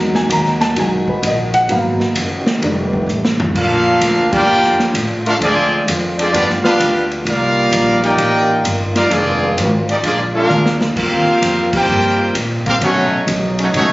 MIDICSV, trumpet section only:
0, 0, Header, 1, 2, 480
1, 0, Start_track
1, 0, Tempo, 463320
1, 1752, Time_signature, 4, 2, 24, 8
1, 14428, End_track
2, 0, Start_track
2, 0, Title_t, "Trumpet section"
2, 0, Program_c, 0, 61
2, 3692, Note_on_c, 0, 69, 88
2, 3692, Note_on_c, 0, 77, 100
2, 3695, Note_on_c, 0, 62, 87
2, 3697, Note_on_c, 0, 70, 82
2, 4443, Note_off_c, 0, 69, 0
2, 4443, Note_off_c, 0, 77, 0
2, 4445, Note_off_c, 0, 62, 0
2, 4446, Note_off_c, 0, 70, 0
2, 4499, Note_on_c, 0, 65, 106
2, 4499, Note_on_c, 0, 74, 106
2, 4502, Note_on_c, 0, 70, 98
2, 4506, Note_on_c, 0, 79, 122
2, 5084, Note_off_c, 0, 65, 0
2, 5084, Note_off_c, 0, 74, 0
2, 5085, Note_off_c, 0, 70, 0
2, 5087, Note_off_c, 0, 79, 0
2, 5458, Note_on_c, 0, 69, 94
2, 5458, Note_on_c, 0, 70, 95
2, 5461, Note_on_c, 0, 62, 89
2, 5463, Note_on_c, 0, 77, 104
2, 5524, Note_off_c, 0, 69, 0
2, 5524, Note_off_c, 0, 70, 0
2, 5527, Note_off_c, 0, 62, 0
2, 5528, Note_off_c, 0, 77, 0
2, 5621, Note_on_c, 0, 60, 90
2, 5622, Note_on_c, 0, 65, 92
2, 5622, Note_on_c, 0, 68, 92
2, 5622, Note_on_c, 0, 74, 106
2, 6055, Note_off_c, 0, 60, 0
2, 6055, Note_off_c, 0, 65, 0
2, 6055, Note_off_c, 0, 68, 0
2, 6055, Note_off_c, 0, 74, 0
2, 6415, Note_on_c, 0, 65, 75
2, 6415, Note_on_c, 0, 68, 73
2, 6418, Note_on_c, 0, 60, 73
2, 6420, Note_on_c, 0, 74, 89
2, 6553, Note_off_c, 0, 65, 0
2, 6553, Note_off_c, 0, 68, 0
2, 6554, Note_off_c, 0, 60, 0
2, 6556, Note_off_c, 0, 74, 0
2, 6570, Note_on_c, 0, 74, 98
2, 6573, Note_on_c, 0, 59, 84
2, 6575, Note_on_c, 0, 65, 83
2, 6575, Note_on_c, 0, 67, 88
2, 6711, Note_off_c, 0, 74, 0
2, 6713, Note_off_c, 0, 59, 0
2, 6715, Note_off_c, 0, 65, 0
2, 6715, Note_off_c, 0, 67, 0
2, 6883, Note_on_c, 0, 67, 95
2, 6887, Note_on_c, 0, 71, 96
2, 6888, Note_on_c, 0, 62, 100
2, 6888, Note_on_c, 0, 77, 106
2, 7326, Note_off_c, 0, 67, 0
2, 7328, Note_off_c, 0, 71, 0
2, 7328, Note_off_c, 0, 77, 0
2, 7329, Note_off_c, 0, 62, 0
2, 7533, Note_on_c, 0, 70, 85
2, 7535, Note_on_c, 0, 63, 85
2, 7538, Note_on_c, 0, 77, 104
2, 7540, Note_on_c, 0, 74, 89
2, 8284, Note_off_c, 0, 70, 0
2, 8285, Note_off_c, 0, 63, 0
2, 8286, Note_off_c, 0, 77, 0
2, 8287, Note_off_c, 0, 74, 0
2, 8326, Note_on_c, 0, 63, 107
2, 8326, Note_on_c, 0, 79, 120
2, 8327, Note_on_c, 0, 74, 103
2, 8330, Note_on_c, 0, 70, 103
2, 8958, Note_off_c, 0, 63, 0
2, 8959, Note_off_c, 0, 74, 0
2, 8959, Note_off_c, 0, 79, 0
2, 8960, Note_off_c, 0, 70, 0
2, 9283, Note_on_c, 0, 70, 96
2, 9284, Note_on_c, 0, 63, 89
2, 9285, Note_on_c, 0, 77, 104
2, 9286, Note_on_c, 0, 74, 96
2, 9426, Note_off_c, 0, 70, 0
2, 9427, Note_off_c, 0, 63, 0
2, 9427, Note_off_c, 0, 77, 0
2, 9428, Note_off_c, 0, 74, 0
2, 9448, Note_on_c, 0, 68, 93
2, 9449, Note_on_c, 0, 60, 92
2, 9450, Note_on_c, 0, 65, 94
2, 9452, Note_on_c, 0, 74, 101
2, 9920, Note_off_c, 0, 68, 0
2, 9921, Note_off_c, 0, 60, 0
2, 9921, Note_off_c, 0, 65, 0
2, 9922, Note_off_c, 0, 74, 0
2, 10252, Note_on_c, 0, 67, 72
2, 10255, Note_on_c, 0, 58, 69
2, 10257, Note_on_c, 0, 63, 77
2, 10257, Note_on_c, 0, 74, 84
2, 10319, Note_off_c, 0, 67, 0
2, 10322, Note_off_c, 0, 58, 0
2, 10323, Note_off_c, 0, 63, 0
2, 10323, Note_off_c, 0, 74, 0
2, 10412, Note_on_c, 0, 58, 78
2, 10417, Note_on_c, 0, 68, 83
2, 10419, Note_on_c, 0, 65, 84
2, 10419, Note_on_c, 0, 74, 95
2, 10553, Note_off_c, 0, 58, 0
2, 10556, Note_off_c, 0, 68, 0
2, 10558, Note_off_c, 0, 65, 0
2, 10558, Note_off_c, 0, 74, 0
2, 10728, Note_on_c, 0, 62, 87
2, 10729, Note_on_c, 0, 68, 85
2, 10731, Note_on_c, 0, 77, 100
2, 10736, Note_on_c, 0, 70, 95
2, 11168, Note_off_c, 0, 62, 0
2, 11168, Note_off_c, 0, 68, 0
2, 11169, Note_off_c, 0, 77, 0
2, 11172, Note_off_c, 0, 70, 0
2, 11358, Note_on_c, 0, 70, 88
2, 11360, Note_on_c, 0, 60, 83
2, 11361, Note_on_c, 0, 67, 86
2, 11361, Note_on_c, 0, 77, 102
2, 12115, Note_off_c, 0, 70, 0
2, 12116, Note_off_c, 0, 60, 0
2, 12116, Note_off_c, 0, 77, 0
2, 12117, Note_off_c, 0, 67, 0
2, 12174, Note_on_c, 0, 70, 102
2, 12175, Note_on_c, 0, 65, 99
2, 12175, Note_on_c, 0, 72, 107
2, 12178, Note_on_c, 0, 79, 124
2, 12801, Note_off_c, 0, 70, 0
2, 12802, Note_off_c, 0, 65, 0
2, 12802, Note_off_c, 0, 72, 0
2, 12804, Note_off_c, 0, 79, 0
2, 13129, Note_on_c, 0, 70, 90
2, 13130, Note_on_c, 0, 67, 93
2, 13131, Note_on_c, 0, 60, 84
2, 13131, Note_on_c, 0, 77, 106
2, 13196, Note_off_c, 0, 70, 0
2, 13197, Note_off_c, 0, 67, 0
2, 13198, Note_off_c, 0, 60, 0
2, 13198, Note_off_c, 0, 77, 0
2, 13289, Note_on_c, 0, 66, 86
2, 13290, Note_on_c, 0, 73, 99
2, 13292, Note_on_c, 0, 57, 88
2, 13296, Note_on_c, 0, 63, 87
2, 13727, Note_off_c, 0, 66, 0
2, 13727, Note_off_c, 0, 73, 0
2, 13728, Note_off_c, 0, 57, 0
2, 13731, Note_off_c, 0, 63, 0
2, 14108, Note_on_c, 0, 63, 76
2, 14111, Note_on_c, 0, 73, 83
2, 14112, Note_on_c, 0, 57, 72
2, 14118, Note_on_c, 0, 66, 75
2, 14171, Note_off_c, 0, 63, 0
2, 14174, Note_off_c, 0, 57, 0
2, 14174, Note_off_c, 0, 73, 0
2, 14179, Note_off_c, 0, 66, 0
2, 14256, Note_on_c, 0, 63, 81
2, 14256, Note_on_c, 0, 73, 100
2, 14257, Note_on_c, 0, 57, 85
2, 14262, Note_on_c, 0, 66, 78
2, 14395, Note_off_c, 0, 63, 0
2, 14395, Note_off_c, 0, 73, 0
2, 14396, Note_off_c, 0, 57, 0
2, 14400, Note_off_c, 0, 66, 0
2, 14428, End_track
0, 0, End_of_file